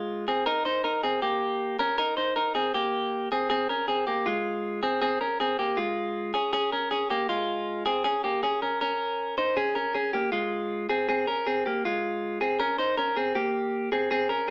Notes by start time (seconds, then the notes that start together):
Already playing: G#3 F4
0.28 C4 G#4
0.46 D#4 A#4
0.65 D#4 C5
0.84 D#4 A#4
1.03 C4 G#4
1.22 A#3 G4
1.79 C#4 A#4
1.98 D#4 A#4
2.17 D#4 C5
2.36 D#4 A#4
2.55 C4 G#4
2.74 A#3 G4
3.32 C4 G#4
3.50 C4 G#4
3.69 C#4 A#4
3.88 C4 G#4
4.07 A#3 G4
4.26 G#3 F4
4.83 C4 G#4
5.02 C4 G#4
5.21 C#4 A#4
5.40 C4 G#4
5.59 A#3 G4
5.77 G#3 F4
6.34 C#4 G#4
6.53 C#4 G#4
6.72 C#4 A#4
6.91 C#4 G#4
7.10 A#3 G4
7.29 G#3 F4
7.86 C4 G#4
8.04 C#4 G#4
8.24 A#3 G4
8.43 C#4 G#4
8.62 C#4 A#4
8.81 C#4 A#4
9.38 D#4 C5
9.57 C#4 G#4
9.75 C#4 A#4
9.94 C#4 G#4
10.13 A#3 G4
10.32 G#3 F4
10.89 C4 G#4
11.09 C4 G#4
11.27 C#4 A#4
11.47 C4 G#4
11.66 A#3 G4
11.85 G#3 F4
12.41 C4 G#4
12.60 C#4 A#4
12.78 D#4 C5
12.97 C#4 A#4
13.16 C4 G#4
13.35 A#3 G4
13.92 C4 G#4
14.11 C4 G#4
14.29 C#4 A#4